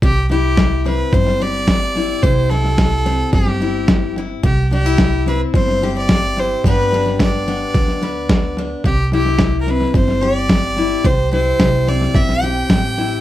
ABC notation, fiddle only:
X:1
M:4/4
L:1/16
Q:1/4=109
K:C
V:1 name="Fiddle"
G2 G4 B2 c2 d6 | c2 A6 G6 z2 | G2 G4 B2 c3 d3 c2 | B4 d8- d2 z2 |
G2 G3- G/2 _B/2 =B2 c2 d6 | c2 c4 d2 e2 g6 |]